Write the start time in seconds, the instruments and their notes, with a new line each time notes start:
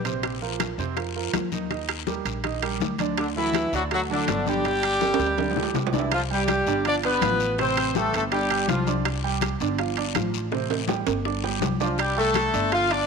Already playing: upright bass A#1
0.04 upright piano C3 C4 C5, high timbale, short guiro
0.23 high bongo, high conga, high timbale, long guiro
0.42 upright piano F3 F4 A#4, high conga
0.60 high bongo, high conga, high timbale, short guiro
0.78 upright bass F2, upright piano C3 C4 C5, high conga, short guiro
0.96 upright piano F3 F4 A#4, high bongo, high conga, high timbale, long guiro
1.15 upright piano F3 F4 A#4, high conga
1.33 upright bass D#2, high bongo, low bongo, high conga, high timbale, low timbale, short guiro
1.52 upright piano D#3 D#4 D#5, high conga, short guiro
1.70 upright piano D#3 D#4 D#5, high bongo, high conga, high timbale, long guiro
1.88 high bongo, high conga, high timbale
2.07 upright piano G3 G4 A#4, high bongo, high conga, short guiro
2.25 upright bass A#1, high bongo, high conga, high timbale, short guiro
2.44 upright piano D#3 D#4 D#5, high bongo, high conga, high timbale, long guiro
2.62 upright piano G3 G4 A#4, high bongo, high conga, high timbale
2.80 upright bass D2, high bongo, low bongo, high conga, short guiro
2.98 upright piano D3 D4 D5, high conga, high timbale, short guiro
3.18 horn section D3 D4, high bongo, high timbale, long guiro
3.35 horn section E3 E4, upright piano F#3 F#4 A4, high conga
3.53 high bongo, high conga, high timbale, short guiro
3.72 upright bass D2, upright piano D3 D4 D5, horn section F#3 F#4, high conga, short guiro
3.91 upright piano F#3 F#4 A4, horn section F#3 F#4, high bongo, high conga, high timbale, long guiro
4.09 horn section D3 D4, upright piano F#3 F#4 A4, high conga
4.27 upright bass G1, high bongo, low bongo, high conga, high timbale, low timbale, short guiro
4.46 upright piano D3 D4 D5, horn section G3 G4, high conga, short guiro
4.65 upright piano D3 D4 D5, high bongo, high conga, high timbale, long guiro
4.83 high bongo, high conga, high timbale
5.01 upright piano G3 G4 A4, high bongo, high conga, high timbale, short guiro
5.14 high timbale
5.19 upright bass D2, high bongo, high conga, short guiro
5.26 high timbale
5.38 upright piano D3 D4 D5, high conga, high timbale, long guiro
5.51 low timbale
5.56 upright piano G3 G4 A4, low bongo, low conga
5.63 low timbale
5.74 upright bass C2, low bongo, low conga, low timbale, short guiro
5.87 low timbale
5.93 upright piano D3 D4 D5, horn section E3 E4, low bongo, low conga, short guiro
5.99 low timbale
6.11 horn section F3 F4, high bongo, high conga, high timbale, long guiro
6.30 upright piano G3 G4 G5, horn section G3 G4, high conga
6.48 high bongo, high conga, high timbale, short guiro
6.66 upright bass G1, upright piano D3 D4 D5, high conga, short guiro
6.85 upright piano F3 F4 F5, horn section D4 D5, high bongo, high conga, high timbale, long guiro
7.03 horn section B3 B4, upright piano D4 D5 D6, high conga, high timbale
7.21 upright bass A1, upright piano F3 F4 F5, high bongo, low bongo, high conga, high timbale, low timbale, short guiro
7.40 high conga, short guiro
7.58 upright piano C3 C4 C5, horn section C4 C5, high bongo, high conga, high timbale, long guiro
7.77 high bongo, high conga, high timbale
7.95 upright piano G3 G4 G5, horn section A3 A4, high bongo, high conga, short guiro
8.13 upright bass G1, horn section A3 A4, high conga, high timbale, short guiro
8.31 horn section G3 G4, upright piano D4 D5 D6, high bongo, high conga, high timbale, long guiro
8.50 upright piano G3 G4 G5, high bongo, high conga, high timbale
8.68 upright bass C2, horn section F3 F4, high bongo, low bongo, high conga, high timbale, low timbale, short guiro
8.87 upright piano D4 D5 D6, high bongo, high conga, short guiro
9.05 high bongo, high timbale, long guiro
9.23 upright piano G3 G4 G5, high conga
9.41 high bongo, high conga, high timbale, short guiro
9.60 upright bass G1, upright piano D3 D4 D5, high conga, short guiro
9.78 upright piano F3 F4 F5, high bongo, high conga, high timbale, long guiro
9.96 upright piano D4 D5 D6, high conga, high timbale
10.15 upright bass A1, upright piano F3 F4 F5, high bongo, low bongo, high conga, high timbale, short guiro
10.33 high conga, short guiro
10.51 upright piano C3 C4 C5, high bongo, high conga, high timbale, long guiro
10.70 high bongo, high conga, high timbale
10.88 upright piano G3 G4 G5, high bongo, high conga, low timbale, short guiro
11.06 upright bass G1, high conga, high timbale, short guiro
11.24 upright piano D4 D5 D6, high bongo, high conga, long guiro
11.43 upright piano G3 G4 G5, high bongo, high conga, low timbale
11.61 upright bass C2, high bongo, low bongo, high conga, low timbale, short guiro
11.80 horn section F3 F4, upright piano D4 D5 D6, high bongo, low timbale, short guiro
11.98 horn section G3 G4, high bongo, high conga, high timbale, long guiro
12.16 upright piano G3 G4 G5, horn section A3 A4, high conga
12.34 high bongo, high conga, high timbale, short guiro
12.53 upright bass G1, upright piano D3 D4 D5, high conga, short guiro
12.71 upright piano F3 F4 F5, horn section F4 F5, high bongo, high conga, high timbale, long guiro
12.90 horn section D4 D5, upright piano D4 D5 D6, high conga, high timbale